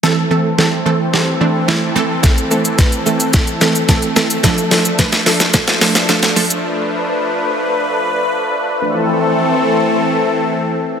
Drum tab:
HH |----------------|xx-xxx-xxx-xxx-x|xxoxxxoxxxoxxxox|----------------|
SH |----------------|xxxxxxxxxxxxxxxx|xxxxxxxxxxxxxxxx|----------------|
SD |o---o---o---o---|o---o---o-o-o-o-|o-o-oooooooooo--|----------------|
BD |----------------|o---o---o---o---|o---o---o-------|----------------|

HH |----------------|
SH |----------------|
SD |----------------|
BD |----------------|